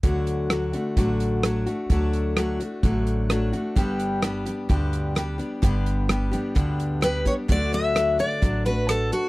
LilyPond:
<<
  \new Staff \with { instrumentName = "Steel-string acoustic guitar" } { \time 4/4 \key d \major \tempo 4 = 129 r1 | r1 | r1 | r2. b'8 cis''8 |
d''8 e''4 d''4 b'8 a'8 fis'8 | }
  \new Staff \with { instrumentName = "Steel-string acoustic guitar" } { \time 4/4 \key d \major <d fis a d' fis'>4 <fis a d' fis'>8 <a d' fis'>8 <d fis a d' fis'>4 <fis a d' fis'>8 <a d' fis'>8 | <d fis a d' fis'>4 <fis a d' fis'>8 <a d' fis'>8 <d fis a d' fis'>4 <fis a d' fis'>8 <a d' fis'>8 | <g, d g b d' g'>4 <g b d' g'>8 <g b d' g'>8 <g, d g b d' g'>4 <g b d' g'>8 <g b d' g'>8 | <g, d g b d' g'>4 <g b d' g'>8 <g b d' g'>8 <g, d g b d' g'>4 <g b d' g'>8 <g b d' g'>8 |
<d fis a d' fis'>4 <fis a d' fis'>8 <a d' fis'>8 <d fis a d' fis'>8 <a d' fis'>4. | }
  \new Staff \with { instrumentName = "Upright bass" } { \clef bass \time 4/4 \key d \major d,2 a,,2 | d,2 a,,2 | g,,2 d,2 | g,,2 d,2 |
d,2 a,,2 | }
  \new DrumStaff \with { instrumentName = "Drums" } \drummode { \time 4/4 <hh bd>8 hh8 <hh ss>8 hh8 <hh bd>8 hh8 <hh ss>8 hh8 | <hh bd>8 hh8 <hh ss>8 hh8 <hh bd>8 hh8 <hh ss>8 hh8 | <hh bd>8 hh8 <hh ss>8 hh8 <hh bd>8 hh8 <hh ss>8 hh8 | <hh bd>8 hh8 <hh ss>8 hh8 <hh bd>8 hh8 <hh ss>8 <hh bd>8 |
<hh bd>8 hh8 <hh ss>8 hh8 <hh bd>8 hh8 <hh ss>8 hh8 | }
>>